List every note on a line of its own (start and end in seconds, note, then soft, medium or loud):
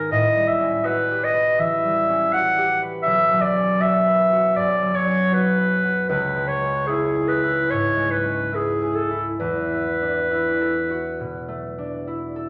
0.00 0.13 G#2 medium
0.00 0.13 D#3 soft
0.00 0.14 G#3 soft
0.00 3.04 B3 soft
0.00 0.14 D#4 medium
0.00 0.14 G#4 medium
0.00 0.10 A#4 medium
0.00 0.14 A#4 medium
0.11 3.10 A2 medium
0.11 0.49 D#5 medium
0.35 1.83 G3 soft
0.47 0.87 E5 medium
0.59 2.08 C#4 medium
0.84 2.33 F#4 medium
0.84 1.25 B4 medium
1.10 2.56 G4 soft
1.24 1.61 D#5 medium
1.34 2.81 B4 medium
1.58 3.09 E3 medium
1.58 2.34 E5 medium
1.84 3.10 G3 medium
2.09 3.54 C#4 soft
2.33 3.80 F#4 medium
2.33 2.81 F#5 medium
2.57 3.09 G4 medium
2.82 4.05 B4 medium
3.02 3.43 E5 medium
3.06 6.14 B1 medium
3.31 4.81 F#3 medium
3.41 3.82 D5 medium
3.56 5.06 C#4 medium
3.81 4.31 F#4 medium
3.81 4.55 E5 medium
4.07 5.56 B4 medium
4.33 5.31 F#4 medium
4.56 6.13 F#2 soft
4.56 4.97 D5 medium
4.82 6.13 F#3 medium
4.95 5.35 C#5 medium
5.07 6.61 C#4 soft
5.32 5.83 F#4 medium
5.32 6.09 B4 medium
5.57 9.47 B4 medium
5.84 6.13 F#4 medium
6.09 9.43 C#2 medium
6.09 6.49 B4 medium
6.36 7.95 G#3 medium
6.48 6.89 C#5 medium
6.62 8.23 C#4 medium
6.87 7.42 E4 medium
6.87 7.30 G#4 medium
7.16 8.80 G#4 soft
7.28 7.72 B4 medium
7.44 8.51 E4 medium
7.70 9.45 G#2 soft
7.70 8.12 C#5 medium
7.96 9.44 G#3 soft
8.11 8.56 B4 medium
8.24 9.44 C#4 soft
8.52 9.09 E4 medium
8.52 8.97 G#4 medium
8.82 9.45 G#4 medium
8.95 9.27 A4 medium
9.11 10.30 E4 medium
9.40 12.49 E2 medium
9.40 12.03 B4 medium
9.71 11.47 A3 soft
10.02 11.77 D4 soft
10.31 12.06 E4 soft
10.61 12.35 A4 soft
10.90 12.49 F#4 medium
11.20 12.49 B2 soft
11.48 12.49 A3 medium
11.78 12.49 D4 soft
12.07 12.49 E4 soft
12.36 12.49 A4 soft